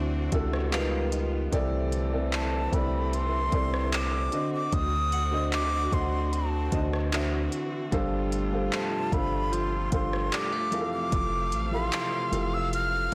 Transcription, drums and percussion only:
0.32 kick loud
0.32 closed hi-hat medium
0.53 cross-stick medium
0.73 clap loud
0.73 closed hi-hat medium
1.12 closed hi-hat medium
1.53 kick loud
1.53 closed hi-hat medium
1.92 closed hi-hat medium
2.33 clap loud
2.33 closed hi-hat medium
2.73 kick loud
2.73 closed hi-hat medium
3.13 closed hi-hat medium
3.52 kick loud
3.52 closed hi-hat medium
3.74 cross-stick medium
3.93 clap loud
3.93 closed hi-hat medium
4.32 closed hi-hat medium
4.73 kick loud
4.73 closed hi-hat medium
5.12 closed hi-hat medium
5.53 clap loud
5.53 closed hi-hat medium
5.92 kick loud
5.92 closed hi-hat medium
6.33 closed hi-hat medium
6.72 kick loud
6.72 closed hi-hat medium
6.93 cross-stick medium
7.13 clap loud
7.13 closed hi-hat medium
7.52 closed hi-hat medium
7.92 kick loud
7.92 closed hi-hat medium
8.32 closed hi-hat medium
8.73 clap loud
8.73 closed hi-hat medium
9.12 kick loud
9.12 closed hi-hat medium
9.53 closed hi-hat medium
9.92 kick loud
9.92 closed hi-hat medium
10.13 cross-stick medium
10.32 clap loud
10.32 closed hi-hat medium
10.72 closed hi-hat medium
11.12 kick loud
11.12 closed hi-hat medium
11.52 closed hi-hat medium
11.93 clap loud
11.93 closed hi-hat medium
12.33 closed hi-hat medium
12.73 closed hi-hat medium

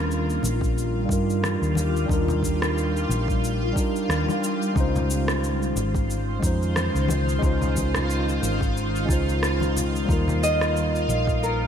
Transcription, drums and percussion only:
0.11 cabasa soft
0.30 cabasa soft
0.43 high conga medium
0.43 cabasa medium
0.61 kick medium
0.61 cabasa soft
0.78 cabasa soft
1.09 kick medium
1.09 cabasa medium
1.30 cabasa soft
1.44 cross-stick medium
1.44 high conga medium
1.44 cabasa soft
1.63 cabasa soft
1.75 high conga medium
1.75 cabasa medium
1.96 cabasa soft
2.09 kick loud
2.09 cabasa soft
2.28 low conga medium
2.28 cabasa soft
2.43 kick medium
2.43 cabasa medium
2.62 cross-stick medium
2.62 cabasa soft
2.78 cabasa soft
2.97 cabasa soft
3.10 high conga medium
3.10 cabasa medium
3.28 kick medium
3.28 cabasa soft
3.44 cabasa soft
3.76 kick loud
3.76 cabasa medium
3.96 cabasa soft
4.10 cross-stick medium
4.10 cabasa soft
4.28 high conga medium
4.28 cabasa soft
4.44 cabasa medium
4.62 cabasa soft
4.76 kick loud
4.76 cabasa soft
4.96 low conga medium
4.96 cabasa soft
5.10 cabasa medium
5.28 cross-stick medium
5.28 cabasa soft
5.44 cabasa soft
5.62 cabasa soft
5.77 high conga medium
5.77 cabasa medium
5.95 kick loud
5.95 cabasa soft
6.10 cabasa soft
6.43 kick loud
6.43 cabasa medium
6.62 cabasa soft
6.76 cross-stick medium
6.76 high conga medium
6.76 cabasa soft
6.96 cabasa soft
7.08 high conga loud
7.08 cabasa medium
7.29 cabasa soft
7.42 kick loud
7.42 cabasa soft
7.61 low conga medium
7.61 cabasa soft
7.76 kick medium
7.76 high conga medium
7.76 cabasa medium
7.95 cross-stick medium
7.95 low conga medium
7.95 cabasa soft
8.10 cabasa soft
8.29 cabasa soft
8.43 high conga medium
8.43 cabasa medium
8.61 kick medium
8.61 cabasa soft
8.77 cabasa soft
8.96 cabasa soft
9.09 kick loud
9.09 cabasa medium
9.29 cabasa soft
9.43 cross-stick medium
9.43 cabasa soft
9.60 high conga medium
9.60 cabasa soft
9.76 low conga medium
9.76 cabasa medium
9.96 cabasa soft
10.09 kick loud
10.09 cabasa soft
10.28 low conga medium
10.28 cabasa soft
10.44 cabasa medium
10.61 cross-stick medium
10.61 cabasa soft
10.77 cabasa soft
10.95 cabasa soft
11.09 high conga medium
11.09 cabasa medium
11.27 kick medium
11.27 cabasa soft
11.44 cabasa soft

